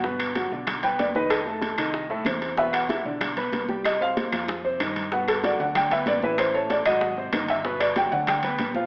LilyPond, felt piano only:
\new Staff \with { instrumentName = "Felt piano" } { \time 4/4 \key g \major \tempo 4 = 189 r2 r8 g''8 d''8 b'8 | a'2 r2 | e''8 fis''8 r2. | ees''8 f''8 r2. |
fis''8 a'8 d''8 fis''8 g''8 e''8 d''8 b'8 | c''8 cis''8 d''8 ees''4 r4 e''8~ | e''8 d''8 g''8 fis''8 g''4. r8 | }